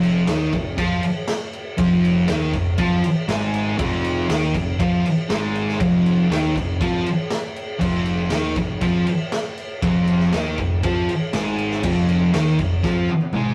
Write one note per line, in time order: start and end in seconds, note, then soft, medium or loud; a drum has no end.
0.00 0.24 F1 loud
0.00 0.26 F2 loud
0.00 0.27 F3 loud
0.00 crash medium
0.27 0.51 D#2 loud
0.27 0.52 D#3 medium
0.27 0.52 D#4 loud
0.27 snare loud
0.27 crash medium
0.53 0.76 F1 medium
0.53 0.73 F2 medium
0.53 kick medium
0.53 crash medium
0.78 1.01 F2 loud
0.78 1.02 F3 medium
0.78 1.02 F4 loud
0.78 kick loud
0.78 crash medium
1.03 crash medium
1.28 snare loud
1.28 crash medium
1.53 crash medium
1.77 2.25 F1 loud
1.77 2.27 F2 loud
1.77 2.27 F3 loud
1.77 kick loud
1.77 crash medium
2.05 crash medium
2.28 2.52 D#2 loud
2.28 2.52 D#3 loud
2.28 2.52 D#4 medium
2.28 snare loud
2.28 crash medium
2.53 2.76 F1 medium
2.53 2.73 F2 medium
2.53 kick medium
2.53 crash medium
2.78 3.02 F2 loud
2.78 3.02 F3 loud
2.78 3.02 F4 loud
2.78 kick loud
2.78 crash medium
3.04 crash medium
3.28 3.75 G#1 medium
3.28 3.77 G#2 loud
3.28 3.78 G#3 loud
3.28 snare loud
3.28 crash medium
3.54 crash medium
3.78 4.25 F1 medium
3.78 4.28 F2 medium
3.78 4.28 F3 loud
3.78 kick loud
3.78 crash medium
4.04 crash medium
4.29 4.53 D#2 loud
4.29 4.53 D#3 medium
4.29 4.53 D#4 loud
4.29 snare loud
4.29 crash medium
4.54 4.77 F1 medium
4.54 4.74 F2 medium
4.54 kick medium
4.54 crash medium
4.79 5.03 F2 loud
4.79 5.03 F3 loud
4.79 5.04 F4 loud
4.79 kick loud
4.79 crash medium
5.06 crash medium
5.29 5.76 G#1 medium
5.29 5.79 G#2 loud
5.29 5.79 G#3 loud
5.29 snare loud
5.29 crash medium
5.55 crash medium
5.68 snare soft
5.80 6.27 F1 medium
5.80 6.29 F2 loud
5.80 6.30 F3 loud
5.80 kick loud
5.80 crash medium
6.06 crash medium
6.30 6.53 D#2 medium
6.30 6.55 D#3 loud
6.30 6.55 D#4 loud
6.30 snare loud
6.30 crash medium
6.55 6.79 F1 medium
6.55 6.75 F2 medium
6.55 kick medium
6.55 crash medium
6.80 7.04 F2 loud
6.80 7.05 F3 medium
6.80 7.05 F4 loud
6.80 kick loud
6.80 crash medium
7.06 crash medium
7.30 snare loud
7.30 crash medium
7.56 crash medium
7.80 8.28 F1 medium
7.80 8.30 F2 loud
7.80 8.31 F3 loud
7.80 kick loud
7.80 crash medium
8.06 crash medium
8.30 8.54 D#2 medium
8.30 8.55 D#3 medium
8.30 8.56 D#4 loud
8.30 snare loud
8.30 crash medium
8.56 8.80 F1 medium
8.56 8.77 F2 medium
8.56 kick medium
8.56 crash medium
8.81 9.05 F2 medium
8.81 9.06 F3 loud
8.81 9.07 F4 loud
8.81 kick loud
8.81 crash medium
9.06 crash medium
9.32 snare loud
9.32 crash medium
9.58 crash medium
9.82 10.29 F1 medium
9.82 10.32 F2 loud
9.82 10.33 F3 loud
9.82 kick loud
9.82 crash medium
10.07 crash medium
10.20 snare soft
10.33 10.57 D#2 loud
10.33 10.58 D#3 medium
10.33 10.58 D#4 loud
10.33 snare loud
10.33 crash medium
10.58 10.82 F1 medium
10.58 10.78 F2 medium
10.58 kick medium
10.58 crash medium
10.83 11.07 F2 loud
10.83 11.08 F3 loud
10.83 11.08 F4 loud
10.83 kick loud
10.83 crash medium
11.09 crash medium
11.33 11.80 G#1 medium
11.33 11.83 G#2 loud
11.33 11.83 G#3 loud
11.33 snare loud
11.33 crash medium
11.58 crash medium
11.71 snare soft
11.83 12.30 F1 medium
11.83 12.33 F2 loud
11.83 12.34 F3 loud
11.83 kick loud
11.83 crash medium
12.09 crash medium
12.33 12.57 D#2 loud
12.33 12.58 D#3 medium
12.33 12.58 D#4 loud
12.33 snare loud
12.33 crash medium
12.59 12.82 F1 medium
12.59 12.79 F2 medium
12.59 kick medium
12.59 crash medium
12.83 13.07 F2 medium
12.83 13.08 F3 loud
12.83 13.08 F4 loud
12.83 kick loud
12.83 snare medium
13.09 high tom medium
13.21 high tom medium
13.33 13.54 G#1 medium
13.33 13.54 G#2 medium
13.33 13.54 G#3 loud
13.33 mid tom medium